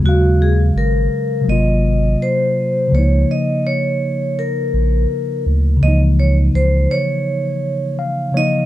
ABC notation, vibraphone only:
X:1
M:4/4
L:1/8
Q:"Swing 16ths" 1/4=83
K:Db
V:1 name="Vibraphone"
G A B2 e2 c2 | d e d2 B3 z | e d c d3 z e |]